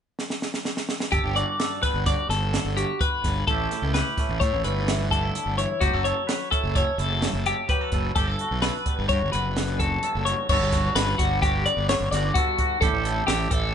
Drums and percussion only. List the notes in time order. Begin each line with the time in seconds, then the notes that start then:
0.19 snare
0.30 snare
0.42 snare
0.54 snare
0.65 snare
0.77 snare
0.89 snare
1.00 snare
1.12 kick, closed hi-hat
1.36 closed hi-hat
1.60 snare, closed hi-hat
1.83 kick, snare, closed hi-hat
2.06 kick, snare, closed hi-hat
2.31 snare, closed hi-hat
2.54 snare, closed hi-hat
2.77 closed hi-hat
3.01 kick, closed hi-hat
3.24 kick, snare, closed hi-hat
3.48 kick, closed hi-hat
3.71 snare, closed hi-hat
3.94 snare, closed hi-hat
4.18 kick, snare, closed hi-hat
4.41 kick, closed hi-hat
4.64 closed hi-hat
4.88 snare, closed hi-hat
5.12 kick, closed hi-hat
5.35 closed hi-hat
5.58 closed hi-hat
5.81 kick, closed hi-hat
6.05 closed hi-hat
6.29 snare, closed hi-hat
6.52 kick, closed hi-hat
6.75 kick, closed hi-hat
6.99 closed hi-hat
7.22 snare, closed hi-hat
7.46 closed hi-hat
7.69 kick, closed hi-hat
7.92 kick, closed hi-hat
8.16 kick, closed hi-hat
8.39 closed hi-hat
8.62 snare, closed hi-hat
8.86 kick, closed hi-hat
9.09 kick, closed hi-hat
9.33 closed hi-hat
9.56 snare, closed hi-hat
9.80 kick, closed hi-hat
10.03 closed hi-hat
10.26 closed hi-hat
10.49 kick, crash
10.72 kick, snare, closed hi-hat
10.96 snare, closed hi-hat
11.19 kick, closed hi-hat
11.43 kick, closed hi-hat
11.66 closed hi-hat
11.89 snare, closed hi-hat
12.12 snare, closed hi-hat
12.35 kick, closed hi-hat
12.59 kick, closed hi-hat
12.82 kick, closed hi-hat
13.05 closed hi-hat
13.28 snare, closed hi-hat
13.51 kick, closed hi-hat